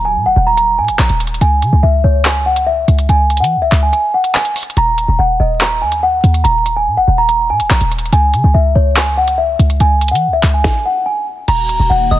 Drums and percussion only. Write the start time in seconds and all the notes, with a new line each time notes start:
0.57 closed hi-hat
0.88 closed hi-hat
0.99 clap, closed hi-hat
1.09 closed hi-hat
1.20 closed hi-hat
1.27 closed hi-hat
1.34 closed hi-hat
1.41 closed hi-hat
1.62 closed hi-hat
2.25 clap, closed hi-hat
2.56 closed hi-hat
2.88 closed hi-hat
2.99 closed hi-hat
3.09 closed hi-hat
3.30 closed hi-hat
3.37 closed hi-hat
3.44 closed hi-hat
3.72 clap
3.93 closed hi-hat
4.24 closed hi-hat
4.35 clap, closed hi-hat
4.45 closed hi-hat
4.56 closed hi-hat, open hi-hat
4.63 closed hi-hat
4.70 closed hi-hat
4.77 closed hi-hat
4.98 closed hi-hat
5.61 clap, closed hi-hat
5.92 closed hi-hat
6.24 closed hi-hat
6.34 closed hi-hat
6.45 closed hi-hat
6.66 closed hi-hat
7.29 closed hi-hat
7.60 closed hi-hat
7.71 clap, closed hi-hat
7.81 closed hi-hat
7.92 closed hi-hat
7.99 closed hi-hat
8.06 closed hi-hat
8.13 closed hi-hat
8.34 closed hi-hat
8.96 clap, closed hi-hat
9.28 closed hi-hat
9.59 closed hi-hat
9.70 closed hi-hat
9.80 closed hi-hat
10.01 closed hi-hat
10.08 closed hi-hat
10.15 closed hi-hat
10.43 clap
10.64 kick, snare
11.48 closed hi-hat, crash
11.69 closed hi-hat